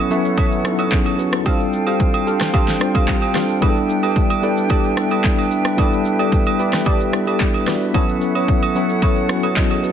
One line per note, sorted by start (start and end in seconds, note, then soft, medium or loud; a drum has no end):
0.00 0.10 F#3 loud
0.00 0.10 B3 loud
0.00 0.11 C#4 loud
0.00 1.44 C#4 medium
0.00 0.11 E4 loud
0.00 0.12 A4 loud
0.00 7.65 A4 medium
0.00 1.18 B4 medium
0.00 1.22 E5 medium
0.00 1.44 F#5 medium
0.10 0.54 F#3 medium
0.10 0.54 B3 medium
0.10 0.54 C#4 medium
0.10 0.55 E4 medium
0.10 0.36 A4 medium
0.10 0.55 A4 medium
0.10 0.36 B4 medium
0.10 0.36 C#5 medium
0.10 0.36 E5 medium
0.10 shaker medium
0.25 shaker medium
0.37 0.75 A4 loud
0.37 0.76 B4 medium
0.37 0.76 C#5 medium
0.37 0.76 E5 loud
0.37 kick loud
0.37 high agogo medium
0.37 shaker medium
0.52 shaker soft
0.64 1.30 F#3 medium
0.64 1.30 B3 medium
0.64 1.30 C#4 medium
0.64 0.72 D#4 medium
0.64 0.92 A4 medium
0.64 cross-stick loud
0.64 shaker medium
0.72 0.95 E4 medium
0.79 0.90 A4 medium
0.79 0.91 B4 medium
0.79 0.91 C#5 medium
0.79 0.91 E5 medium
0.79 high agogo medium
0.79 shaker medium
0.92 1.18 G#4 medium
0.92 1.17 C#5 medium
0.92 kick loud
0.92 clap loud
0.92 shaker medium
1.06 high agogo medium
1.06 shaker medium
1.19 1.32 F#4 medium
1.19 1.32 B4 medium
1.19 shaker medium
1.33 1.59 E4 medium
1.33 1.45 A4 medium
1.33 cross-stick loud
1.33 shaker medium
1.45 2.32 G3 loud
1.45 2.32 C4 loud
1.45 2.32 D4 loud
1.45 7.64 D4 medium
1.45 2.33 F4 loud
1.45 1.58 G4 medium
1.45 1.58 A4 medium
1.45 2.33 A4 loud
1.45 1.59 C5 medium
1.45 3.60 C5 medium
1.45 3.60 F5 medium
1.45 1.59 F5 loud
1.45 7.69 G5 medium
1.45 kick loud
1.45 high agogo medium
1.45 shaker medium
1.60 shaker soft
1.73 shaker medium
1.87 2.24 G4 medium
1.87 2.24 A4 medium
1.87 2.24 C5 medium
1.87 2.24 F5 medium
1.87 high agogo medium
1.87 shaker soft
2.00 kick medium
2.00 shaker medium
2.14 high agogo medium
2.14 shaker medium
2.27 2.52 G4 medium
2.27 2.52 A4 medium
2.27 2.52 C5 medium
2.27 2.52 F5 medium
2.27 shaker medium
2.41 cross-stick medium
2.41 snare medium
2.41 shaker medium
2.53 2.91 G4 loud
2.53 2.92 A4 medium
2.53 2.92 C5 medium
2.53 2.92 F5 loud
2.53 kick loud
2.53 high agogo medium
2.53 shaker medium
2.68 snare medium
2.68 shaker soft
2.80 3.24 G3 medium
2.80 3.24 C4 medium
2.80 3.25 D4 medium
2.80 3.25 F4 medium
2.80 3.25 C5 loud
2.80 cross-stick loud
2.80 shaker medium
2.95 3.32 G4 medium
2.95 3.32 A4 medium
2.95 3.32 C5 medium
2.95 3.32 F5 medium
2.95 kick loud
2.95 high agogo medium
2.95 shaker medium
3.08 kick loud
3.08 clap loud
3.08 shaker medium
3.22 high agogo medium
3.22 shaker medium
3.34 3.56 G3 medium
3.34 3.56 C4 medium
3.34 3.57 D4 medium
3.34 3.57 F4 medium
3.34 3.60 G4 medium
3.34 3.60 A4 medium
3.34 3.57 A4 medium
3.34 3.60 C5 medium
3.34 3.60 F5 medium
3.34 cross-stick medium
3.34 snare medium
3.34 shaker loud
3.49 shaker soft
3.61 4.27 G3 loud
3.61 4.27 B3 loud
3.61 4.27 D4 loud
3.61 4.27 E4 loud
3.61 3.75 G4 medium
3.61 3.69 G#4 loud
3.61 3.75 A4 medium
3.61 3.75 B4 medium
3.61 9.79 B4 medium
3.61 3.75 D5 loud
3.61 9.83 E5 medium
3.61 kick loud
3.61 high agogo medium
3.61 shaker medium
3.69 4.31 A4 loud
3.76 shaker soft
3.89 shaker medium
4.03 4.40 G4 medium
4.03 4.40 A4 medium
4.03 4.40 B4 medium
4.03 4.40 D5 medium
4.03 high agogo medium
4.03 shaker soft
4.16 kick medium
4.16 shaker medium
4.30 high agogo medium
4.30 shaker medium
4.42 4.86 G3 medium
4.42 4.86 B3 medium
4.42 4.87 D4 medium
4.42 4.87 E4 medium
4.42 4.68 G4 medium
4.42 4.68 A4 medium
4.42 4.87 A4 medium
4.42 4.68 B4 medium
4.42 4.68 D5 medium
4.42 shaker medium
4.57 shaker medium
4.69 5.08 G4 loud
4.69 5.08 A4 medium
4.69 5.08 B4 medium
4.69 5.08 D5 loud
4.69 kick loud
4.69 high agogo medium
4.69 shaker medium
4.84 shaker soft
4.96 5.62 G3 medium
4.96 5.62 B3 medium
4.96 5.62 D4 medium
4.96 5.63 E4 medium
4.96 5.63 A4 medium
4.96 cross-stick loud
4.96 shaker medium
5.11 5.23 G4 medium
5.11 5.23 A4 medium
5.11 5.23 B4 medium
5.11 5.23 D5 medium
5.11 high agogo medium
5.11 shaker medium
5.24 kick medium
5.24 clap medium
5.24 shaker medium
5.38 high agogo medium
5.38 shaker medium
5.51 shaker loud
5.65 cross-stick loud
5.65 shaker soft
5.77 6.64 G3 loud
5.77 6.65 B3 loud
5.77 6.65 D4 loud
5.77 6.65 E4 loud
5.77 5.91 G4 medium
5.77 5.91 A4 medium
5.77 6.65 A4 loud
5.77 5.91 B4 medium
5.77 5.91 D5 loud
5.77 kick loud
5.77 high agogo medium
5.77 shaker medium
5.92 shaker soft
6.05 shaker medium
6.19 6.56 G4 medium
6.19 6.56 A4 medium
6.19 6.56 B4 medium
6.19 6.56 D5 medium
6.19 high agogo medium
6.19 shaker soft
6.32 kick medium
6.32 shaker medium
6.46 high agogo medium
6.46 shaker medium
6.59 6.84 G4 medium
6.59 6.84 A4 medium
6.59 6.84 B4 medium
6.59 6.84 D5 medium
6.59 shaker loud
6.73 cross-stick medium
6.73 snare medium
6.73 shaker medium
6.86 7.24 G4 loud
6.86 7.24 A4 medium
6.86 7.24 B4 medium
6.86 7.24 D5 loud
6.86 kick loud
6.86 high agogo medium
6.86 shaker medium
7.00 shaker medium
7.12 7.57 G3 medium
7.12 7.57 B3 medium
7.12 7.57 D4 medium
7.12 7.57 E4 medium
7.12 7.57 A4 medium
7.12 cross-stick loud
7.12 shaker medium
7.27 7.64 G4 medium
7.27 7.64 A4 medium
7.27 7.64 B4 medium
7.27 7.64 D5 medium
7.27 high agogo medium
7.27 shaker medium
7.40 kick loud
7.40 clap medium
7.40 shaker medium
7.54 high agogo medium
7.54 shaker medium
7.67 7.89 G3 medium
7.67 7.89 B3 medium
7.67 7.89 D4 medium
7.67 7.89 E4 medium
7.67 7.90 F#4 medium
7.67 7.92 G4 medium
7.67 7.92 A4 medium
7.67 7.92 B4 medium
7.67 7.92 D5 medium
7.67 cross-stick medium
7.67 snare medium
7.67 shaker loud
7.81 shaker soft
7.94 8.59 F#3 loud
7.94 8.60 B3 loud
7.94 8.60 C#4 loud
7.94 9.92 C#4 medium
7.94 8.07 E4 medium
7.94 8.60 E4 loud
7.94 8.07 A4 medium
7.94 9.92 A4 medium
7.94 8.60 A4 loud
7.94 8.07 B4 medium
7.94 8.07 C#5 loud
7.94 9.92 F#5 medium
7.94 kick loud
7.94 high agogo medium
7.94 shaker medium
8.09 shaker soft
8.21 shaker medium
8.35 8.72 E4 medium
8.35 8.72 A4 medium
8.35 8.72 B4 medium
8.35 8.73 C#5 medium
8.35 high agogo medium
8.35 shaker soft
8.48 kick medium
8.48 shaker medium
8.62 high agogo medium
8.62 shaker medium
8.75 9.19 F#3 medium
8.75 9.19 B3 medium
8.75 9.19 C#4 medium
8.75 9.00 E4 medium
8.75 9.19 E4 medium
8.75 9.00 A4 medium
8.75 9.20 A4 medium
8.75 9.01 B4 medium
8.75 9.01 C#5 medium
8.75 shaker medium
8.90 shaker medium
9.02 9.40 E4 loud
9.02 9.40 A4 medium
9.02 9.40 B4 medium
9.02 9.40 C#5 loud
9.02 kick loud
9.02 high agogo medium
9.02 shaker medium
9.16 shaker soft
9.29 9.92 F#3 medium
9.29 9.92 B3 medium
9.29 9.92 C#4 medium
9.29 9.57 E4 medium
9.29 9.57 F#4 loud
9.29 cross-stick loud
9.29 shaker medium
9.43 9.55 E4 medium
9.43 9.55 A4 medium
9.43 9.55 B4 medium
9.43 9.55 C#5 medium
9.43 high agogo medium
9.43 shaker medium
9.56 9.70 A4 medium
9.56 9.70 D#5 medium
9.56 kick loud
9.56 clap medium
9.56 shaker medium
9.71 9.83 G#4 medium
9.71 9.83 C#5 medium
9.71 high agogo medium
9.71 shaker medium
9.83 9.92 F#4 medium
9.83 9.92 B4 medium
9.83 shaker medium